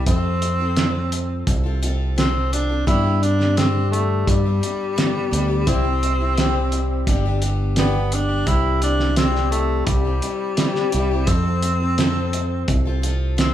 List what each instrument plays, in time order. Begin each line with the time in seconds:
0.06 fingered electric bass F2, steel-string acoustic guitar F3 C4 F4 A4, tenor saxophone C4, kick, closed hi-hat
0.42 closed hi-hat
0.60 steel-string acoustic guitar C4 F4 A4
0.76 steel-string acoustic guitar F3 C4 F4 A4, snare, closed hi-hat
1.12 closed hi-hat
1.47 fingered electric bass C2, kick, closed hi-hat
1.64 steel-string acoustic guitar C4 F4 A4
1.82 steel-string acoustic guitar F3 C4 F4 A4, closed hi-hat
2.16 steel-string acoustic guitar F3 C4 F4 A4, tenor saxophone C4, snare, closed hi-hat
2.51 steel-string acoustic guitar F3 C4 F4 A4, tenor saxophone D4, closed hi-hat
2.69 steel-string acoustic guitar C4 F4 A4
2.87 steel-string acoustic guitar G2 D3 G3 B3 D4 G4, fingered electric bass G2, tenor saxophone E4, kick, closed hi-hat
3.04 steel-string acoustic guitar G3 B3 D4 G4
3.23 tenor saxophone D4, closed hi-hat
3.39 steel-string acoustic guitar G3 B3 D4 G4, snare
3.56 steel-string acoustic guitar G2 D3 G3 D4 G4, tenor saxophone C4, snare, closed hi-hat
3.91 tenor saxophone A3, closed hi-hat
4.27 fingered electric bass G2, tenor saxophone G3, kick, closed hi-hat
4.44 steel-string acoustic guitar G3 B3 D4 G4
4.61 steel-string acoustic guitar G3 B3 D4 G4, closed hi-hat
4.96 steel-string acoustic guitar G2 D3 G3 B3 D4 G4, snare, closed hi-hat
5.31 fingered electric bass D2, steel-string acoustic guitar G3 B3 D4 G4, closed hi-hat
5.48 steel-string acoustic guitar G3 B3 D4 G4
5.66 fingered electric bass C2, steel-string acoustic guitar C3 G3 C4 E4 G4, tenor saxophone C4, kick, closed hi-hat
5.84 steel-string acoustic guitar C4 E4 G4
6.03 closed hi-hat
6.18 steel-string acoustic guitar C4 E4 G4
6.37 steel-string acoustic guitar C3 G3 C4 E4 G4, snare, closed hi-hat
6.72 closed hi-hat
7.07 fingered electric bass G1, steel-string acoustic guitar G2 D3 G3 B3 D4 G4, kick, closed hi-hat
7.25 steel-string acoustic guitar G3 B3 D4 G4
7.41 steel-string acoustic guitar G3 B3 D4 G4, closed hi-hat
7.76 steel-string acoustic guitar G2 D3 G3 B3 D4 G4, tenor saxophone B3, snare, closed hi-hat
7.94 steel-string acoustic guitar G3 B3 D4 G4
8.11 steel-string acoustic guitar G3 B3 D4 G4, tenor saxophone D4, closed hi-hat
8.29 steel-string acoustic guitar G3 B3 D4 G4
8.45 fingered electric bass C2, steel-string acoustic guitar C3 G3 C4 E4 G4, tenor saxophone E4, kick, closed hi-hat
8.82 tenor saxophone D4, closed hi-hat
8.99 steel-string acoustic guitar C4 E4 G4, snare
9.16 steel-string acoustic guitar C3 G3 C4 E4 G4, tenor saxophone C4, snare, closed hi-hat
9.36 snare
9.51 tenor saxophone A3, closed hi-hat
9.86 fingered electric bass C2, tenor saxophone G3, kick, closed hi-hat
10.05 steel-string acoustic guitar C4 E4 G4
10.21 steel-string acoustic guitar G3 C4 E4 G4, closed hi-hat
10.57 steel-string acoustic guitar C3 G3 C4 E4 G4, snare, closed hi-hat
10.75 snare
10.92 fingered electric bass C2, steel-string acoustic guitar G3 C4 E4 G4, closed hi-hat
11.11 steel-string acoustic guitar C4 E4 G4
11.27 fingered electric bass F2, steel-string acoustic guitar F3 C4 F4 A4, tenor saxophone C4, kick, closed hi-hat
11.45 steel-string acoustic guitar C4 F4 A4
11.62 closed hi-hat
11.80 steel-string acoustic guitar C4 F4 A4
11.98 steel-string acoustic guitar F3 C4 F4 A4, snare, closed hi-hat
12.33 closed hi-hat
12.68 fingered electric bass C2, kick, closed hi-hat
12.85 steel-string acoustic guitar C4 F4 A4
13.02 steel-string acoustic guitar F3 C4 F4 A4, closed hi-hat
13.37 steel-string acoustic guitar F3 C4 F4 A4, tenor saxophone C4, snare, closed hi-hat